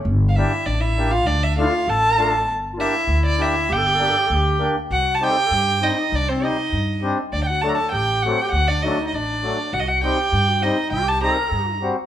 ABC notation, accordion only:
X:1
M:2/4
L:1/16
Q:1/4=99
K:none
V:1 name="Accordion"
z2 [_B,DG] z3 [B,DG] z | z2 [A,DF] z3 [A,DF] z | z2 [_B,DG] z3 [B,DG] z | z2 [_B,DG] z3 [B,DG] z |
z2 [G,C_E] z3 [G,CE] z | z2 [G,C_E] z3 [G,CD] z | z2 [^F,A,D] z3 [F,A,C] z | z2 [^F,A,D] z3 [F,A,D] z |
z2 [G,C_E] z3 [G,CE] z | z2 [G,C_E] z3 [G,C^F] z |]